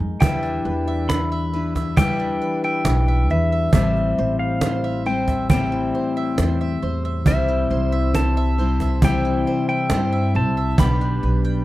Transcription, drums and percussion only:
0.22 cajon bass medium
0.44 cajon slap soft
1.10 cajon slap medium
1.76 cajon bass medium
1.76 cajon slap soft
1.97 cajon bass medium
2.41 cajon slap soft
2.85 cajon slap medium
3.73 cajon bass medium
3.96 cajon slap soft
4.61 cajon slap medium
5.06 cajon slap soft
5.28 cajon bass medium
5.28 cajon slap soft
5.50 cajon bass medium
5.94 cajon slap soft
6.38 cajon slap medium
7.26 cajon bass medium
7.49 cajon slap soft
8.14 cajon slap medium
8.59 cajon slap soft
8.80 cajon bass medium
8.80 cajon slap soft
9.02 cajon bass medium
9.46 cajon slap soft
9.90 cajon slap medium
10.78 cajon bass medium
11.01 cajon slap soft

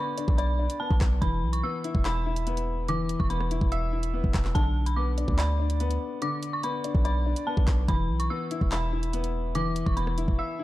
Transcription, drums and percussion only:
0.18 closed hi-hat medium
0.28 kick medium
0.38 closed hi-hat medium
0.70 closed hi-hat medium
0.91 kick loud
1.01 kick loud
1.01 cross-stick loud
1.01 clap loud
1.01 closed hi-hat medium
1.22 kick loud
1.22 closed hi-hat medium
1.53 closed hi-hat medium
1.84 closed hi-hat medium
1.95 kick medium
2.05 clap loud
2.05 closed hi-hat medium
2.36 closed hi-hat medium
2.47 closed hi-hat medium
2.57 closed hi-hat medium
2.88 closed hi-hat medium
3.09 closed hi-hat medium
3.20 kick medium
3.30 closed hi-hat medium
3.41 cross-stick medium
3.51 closed hi-hat medium
3.61 kick loud
3.72 closed hi-hat medium
4.03 closed hi-hat medium
4.24 kick medium
4.34 kick loud
4.34 cross-stick loud
4.34 clap loud
4.34 closed hi-hat medium
4.45 clap medium
4.55 kick loud
4.55 closed hi-hat medium
4.86 closed hi-hat medium
5.18 closed hi-hat medium
5.28 kick loud
5.39 clap loud
5.39 closed hi-hat medium
5.70 closed hi-hat medium
5.80 closed hi-hat medium
5.91 closed hi-hat medium
6.22 closed hi-hat medium
6.43 closed hi-hat medium
6.63 closed hi-hat medium
6.84 closed hi-hat medium
6.95 kick loud
7.05 closed hi-hat medium
7.36 closed hi-hat medium
7.57 kick medium
7.68 kick loud
7.68 cross-stick medium
7.68 clap loud
7.68 closed hi-hat medium
7.88 kick loud
7.88 closed hi-hat medium
8.20 closed hi-hat medium
8.51 closed hi-hat medium
8.61 kick loud
8.72 clap loud
8.72 closed hi-hat medium
9.03 closed hi-hat medium
9.13 closed hi-hat medium
9.24 closed hi-hat medium
9.55 closed hi-hat medium
9.76 closed hi-hat medium
9.87 kick medium
9.97 closed hi-hat medium
10.07 cross-stick medium
10.18 closed hi-hat medium
10.28 kick loud

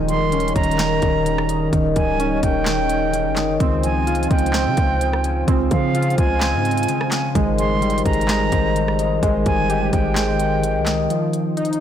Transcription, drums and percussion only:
0.09 closed hi-hat medium
0.32 closed hi-hat medium
0.40 closed hi-hat medium
0.48 closed hi-hat medium
0.56 kick loud
0.56 closed hi-hat medium
0.63 closed hi-hat medium
0.71 closed hi-hat medium
0.78 snare loud
0.78 clap loud
0.78 closed hi-hat medium
1.02 kick loud
1.02 closed hi-hat medium
1.26 closed hi-hat medium
1.38 cross-stick loud
1.49 closed hi-hat medium
1.73 kick loud
1.73 closed hi-hat medium
1.96 kick loud
1.96 closed hi-hat medium
2.20 closed hi-hat medium
2.43 kick loud
2.43 closed hi-hat medium
2.66 snare loud
2.66 clap loud
2.66 closed hi-hat medium
2.89 closed hi-hat medium
3.14 closed hi-hat medium
3.36 snare medium
3.36 clap medium
3.36 closed hi-hat medium
3.60 kick loud
3.60 closed hi-hat medium
3.83 closed hi-hat medium
4.07 closed hi-hat medium
4.15 closed hi-hat medium
4.23 closed hi-hat medium
4.31 kick loud
4.31 closed hi-hat medium
4.38 closed hi-hat medium
4.46 closed hi-hat medium
4.53 snare loud
4.53 clap loud
4.53 closed hi-hat medium
4.77 kick loud
4.77 closed hi-hat medium
5.01 closed hi-hat medium
5.13 cross-stick medium
5.24 closed hi-hat medium
5.48 kick loud
5.48 closed hi-hat medium
5.71 kick loud
5.71 closed hi-hat medium
5.95 closed hi-hat medium
6.03 closed hi-hat medium
6.10 closed hi-hat soft
6.18 kick loud
6.18 closed hi-hat medium
6.41 snare loud
6.41 clap loud
6.41 closed hi-hat medium
6.65 closed hi-hat soft
6.71 closed hi-hat medium
6.77 closed hi-hat medium
6.83 closed hi-hat medium
6.88 closed hi-hat medium
7.01 cross-stick medium
7.11 snare loud
7.11 clap medium
7.11 closed hi-hat medium
7.35 kick loud
7.35 closed hi-hat medium
7.58 closed hi-hat medium
7.82 closed hi-hat medium
7.90 closed hi-hat medium
7.98 closed hi-hat medium
8.06 kick loud
8.06 closed hi-hat medium
8.13 closed hi-hat medium
8.21 closed hi-hat medium
8.28 snare loud
8.28 clap loud
8.28 closed hi-hat medium
8.52 kick loud
8.52 closed hi-hat medium
8.76 closed hi-hat medium
8.88 cross-stick medium
8.99 closed hi-hat medium
9.23 kick loud
9.23 closed hi-hat medium
9.46 kick loud
9.46 closed hi-hat medium
9.70 closed hi-hat medium
9.93 kick loud
9.93 closed hi-hat medium
10.16 snare loud
10.16 clap loud
10.16 closed hi-hat medium
10.39 closed hi-hat medium
10.63 closed hi-hat medium
10.86 snare medium
10.86 clap medium
10.86 closed hi-hat medium
11.10 closed hi-hat medium
11.33 closed hi-hat medium
11.57 closed hi-hat medium
11.65 closed hi-hat medium
11.73 closed hi-hat medium

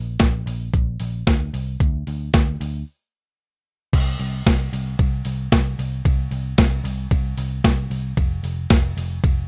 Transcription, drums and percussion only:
0.19 kick loud
0.19 snare loud
0.19 closed hi-hat medium
0.47 open hi-hat medium
0.74 kick loud
0.74 closed hi-hat medium
1.00 open hi-hat medium
1.27 kick medium
1.27 snare loud
1.27 closed hi-hat medium
1.54 open hi-hat medium
1.80 kick medium
1.80 closed hi-hat medium
2.07 open hi-hat medium
2.34 kick loud
2.34 snare loud
2.34 closed hi-hat medium
2.61 open hi-hat medium
3.93 kick loud
3.93 crash medium
3.93 ride medium
4.20 open hi-hat medium
4.46 kick loud
4.46 snare loud
4.46 ride medium
4.73 open hi-hat medium
4.99 kick loud
4.99 ride medium
5.25 open hi-hat medium
5.52 kick loud
5.52 snare loud
5.52 ride medium
5.79 open hi-hat medium
6.05 kick loud
6.05 ride medium
6.31 open hi-hat medium
6.58 kick loud
6.58 snare loud
6.58 ride medium
6.85 open hi-hat medium
7.11 kick loud
7.11 ride medium
7.38 open hi-hat medium
7.64 kick loud
7.64 snare loud
7.64 ride medium
7.91 open hi-hat medium
8.17 kick medium
8.17 ride medium
8.44 open hi-hat medium
8.70 kick loud
8.70 snare loud
8.70 ride medium
8.98 open hi-hat medium
9.24 kick loud
9.24 ride medium

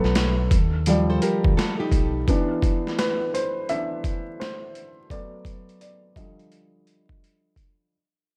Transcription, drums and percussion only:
0.04 snare soft
0.15 snare loud
0.15 closed hi-hat medium
0.51 kick loud
0.51 closed hi-hat medium
0.86 closed hi-hat medium
1.22 closed hi-hat medium
1.44 kick medium
1.59 snare loud
1.59 closed hi-hat medium
1.92 kick medium
1.92 closed hi-hat medium
2.28 kick medium
2.28 closed hi-hat medium
2.62 kick medium
2.62 closed hi-hat medium
2.87 snare soft
2.99 snare loud
2.99 closed hi-hat medium
3.35 closed hi-hat medium
3.69 closed hi-hat medium
4.04 kick medium
4.04 closed hi-hat medium
4.41 snare loud
4.41 closed hi-hat medium
4.75 closed hi-hat medium
5.10 kick medium
5.10 closed hi-hat medium
5.45 kick medium
5.45 closed hi-hat medium
5.69 closed hi-hat soft
5.81 closed hi-hat medium
6.16 kick loud
6.16 closed hi-hat medium
6.39 closed hi-hat soft
6.52 closed hi-hat medium
6.87 closed hi-hat medium
7.09 kick medium
7.24 closed hi-hat medium
7.56 kick medium
7.56 closed hi-hat medium

